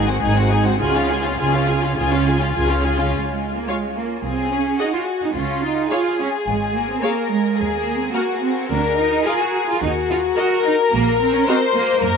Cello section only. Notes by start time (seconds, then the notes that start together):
Already playing: G#2
0.22 G#2
0.80 C#3
1.40 C#3
1.98 C#3
2.56 C#3
3.28 G#3
3.57 A#3
3.70 G#3
3.98 A#3
4.25 C4
4.53 C#4
4.81 D#4
4.94 F4
5.23 D#4
5.36 C#4
5.64 D#4
5.92 F4
6.20 C#4
6.47 G#3
6.75 A#3
6.89 C4
7.03 A#3
7.31 G#3
7.73 A#3
8.01 C4
8.15 A#3
8.42 C4
8.71 D4
8.99 D#4
9.26 F4
9.41 F#4
9.69 F4
9.82 D#4
10.10 F4
10.38 F#4
10.66 D#4
10.93 A#3
11.21 C4
11.34 C#4
11.48 C4
11.76 A#3